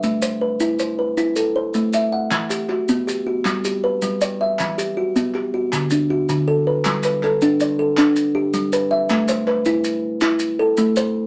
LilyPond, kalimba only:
<<
  \new Staff \with { instrumentName = "Kalimba" } { \time 12/8 \key g \major \tempo 4. = 106 <d'' e''>8 c''8 b'4 c''8 b'4 a'8 c''4 e''8 fis''8~ | fis''8 g'8 fis'4 g'8 fis'4 g'8 b'4 d''8 e''8~ | e''8 g'8 fis'4 g'8 fis'4 d'8 fis'4 a'8 b'8~ | b'8 b'8 a'4 d''8 a'4. g'4 b'8 e''8~ |
e''8 c''8 b'4. r4. a'4 c''4 | }
  \new Staff \with { instrumentName = "Kalimba" } { \time 12/8 \key g \major a4 r8 e'4 r8 e'4 r8 a4 r8 | e4 r8 b4 r8 g4 r8 g4 r8 | e4 r8 b4 r8 d4 r8 d4 r8 | g4 r8 d'4 r8 d'4 r8 g4 r8 |
a4 r8 e'4 r8 e'4 r8 a4 r8 | }
>>